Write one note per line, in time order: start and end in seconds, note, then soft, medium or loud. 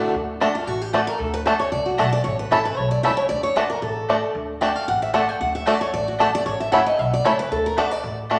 0.00 0.12 A2 loud
0.00 0.13 D3 medium
0.00 0.13 A3 medium
0.00 0.14 D4 loud
0.00 0.14 F#4 medium
0.14 0.53 D2 medium
0.40 0.50 A3 loud
0.40 0.47 A3 medium
0.40 0.44 D4 medium
0.40 0.55 D4 medium
0.40 0.50 F#4 medium
0.40 0.51 D5 loud
0.40 0.51 A5 loud
0.55 0.67 F4 medium
0.67 1.05 A1 medium
0.67 0.82 F#4 medium
0.82 0.93 G4 medium
0.93 1.03 A3 medium
0.93 1.00 A3 medium
0.93 0.97 D4 medium
0.93 1.03 F#4 medium
0.93 1.07 A4 medium
0.93 1.03 D5 medium
0.93 1.04 A5 loud
1.07 1.19 A#4 loud
1.19 1.58 D2 loud
1.19 1.33 A4 medium
1.34 1.45 B4 loud
1.46 1.55 A3 medium
1.46 1.53 A3 medium
1.46 1.49 D4 medium
1.46 1.56 F#4 loud
1.46 1.59 A4 medium
1.46 1.56 D5 medium
1.46 1.56 A5 loud
1.60 1.71 C#5 loud
1.72 1.95 C#2 medium
1.72 1.86 D5 loud
1.86 1.98 F#4 medium
1.98 2.21 B1 medium
1.98 2.08 A3 medium
1.98 2.05 A3 medium
1.98 2.02 D4 medium
1.98 2.08 F#4 medium
1.98 2.12 A4 medium
1.98 2.08 D5 medium
1.98 2.09 A5 loud
2.13 2.24 D5 loud
2.24 2.44 A1 loud
2.24 2.38 C#5 medium
2.39 2.51 B4 medium
2.51 2.74 A1 medium
2.51 2.61 A3 medium
2.51 2.58 A3 medium
2.51 2.58 C#4 medium
2.51 2.61 E4 medium
2.51 2.58 E4 medium
2.51 2.65 A4 medium
2.51 2.61 C#5 medium
2.51 2.61 A5 loud
2.65 2.77 B4 medium
2.77 3.00 B1 medium
2.77 2.90 C#5 medium
2.91 3.03 D5 medium
3.03 3.26 C#2 medium
3.03 3.13 A3 medium
3.03 3.11 A3 medium
3.03 3.11 C#4 medium
3.03 3.14 E4 medium
3.03 3.11 E4 medium
3.03 3.14 C#5 medium
3.03 3.16 E5 loud
3.03 3.14 A5 loud
3.17 3.28 C#5 loud
3.29 3.68 D2 loud
3.29 3.43 D5 loud
3.43 3.56 C#5 loud
3.56 3.66 A3 medium
3.56 3.63 A3 medium
3.56 3.59 D4 medium
3.56 3.66 F#4 medium
3.56 3.69 B4 medium
3.56 3.66 D5 loud
3.56 3.67 A5 loud
3.70 3.82 A#4 medium
3.82 4.21 A1 loud
3.82 4.31 A4 medium
4.09 4.19 A3 medium
4.09 4.16 A3 medium
4.09 4.12 D4 medium
4.09 4.19 F#4 medium
4.09 4.19 D5 loud
4.09 4.19 A5 loud
4.35 4.73 D2 medium
4.61 4.71 A3 medium
4.61 4.68 A3 medium
4.61 4.64 D4 medium
4.61 4.71 F#4 medium
4.61 4.71 D5 loud
4.61 4.76 G5 medium
4.61 4.72 A5 loud
4.76 4.87 F5 loud
4.88 5.26 A1 medium
4.88 5.02 F#5 loud
5.02 5.13 E5 loud
5.13 5.24 A3 medium
5.13 5.21 A3 medium
5.13 5.17 D4 medium
5.13 5.24 F#4 loud
5.13 5.24 D5 medium
5.13 5.29 F#5 medium
5.13 5.24 A5 medium
5.29 5.40 G5 loud
5.40 5.79 D2 loud
5.40 5.54 F#5 medium
5.55 5.66 E5 loud
5.66 5.76 A3 loud
5.66 5.73 A3 medium
5.66 5.70 D4 medium
5.66 5.76 F#4 loud
5.66 5.81 D5 medium
5.66 5.77 D5 loud
5.66 5.77 A5 loud
5.81 5.93 C#5 loud
5.93 6.32 A1 medium
5.93 6.07 D5 loud
6.08 6.19 F#4 medium
6.19 6.29 A3 loud
6.19 6.26 A3 medium
6.19 6.23 D4 medium
6.19 6.29 F#4 medium
6.19 6.34 A4 medium
6.19 6.29 D5 medium
6.19 6.30 A5 loud
6.35 6.45 D5 loud
6.46 6.84 A1 loud
6.46 6.60 C#5 medium
6.60 6.72 E5 loud
6.72 6.82 A3 medium
6.72 6.79 A3 medium
6.72 6.79 C#4 medium
6.72 6.82 E4 loud
6.72 6.79 E4 medium
6.72 6.82 C#5 loud
6.72 6.86 F#5 loud
6.72 6.82 A5 loud
6.86 6.99 D#5 loud
6.99 7.21 B1 medium
6.99 7.13 E5 loud
7.14 7.25 D5 loud
7.24 7.47 C#2 medium
7.24 7.34 A3 medium
7.24 7.31 A3 medium
7.24 7.32 C#4 medium
7.24 7.35 E4 loud
7.24 7.32 E4 medium
7.24 7.35 C#5 loud
7.24 7.39 C#5 medium
7.24 7.35 A5 loud
7.39 7.51 B4 loud
7.51 7.90 D2 loud
7.51 7.65 A4 loud
7.66 7.77 A#4 loud
7.77 7.87 A3 medium
7.77 7.84 A3 medium
7.77 7.81 D4 medium
7.77 7.87 F#4 loud
7.77 7.91 B4 loud
7.77 7.87 D5 loud
7.77 7.88 A5 loud
7.91 8.18 D5 loud
8.04 8.39 A1 loud
8.30 8.39 A3 medium
8.30 8.37 A3 medium
8.30 8.33 D4 medium
8.30 8.39 F#4 medium
8.30 8.39 D5 loud
8.30 8.39 A5 loud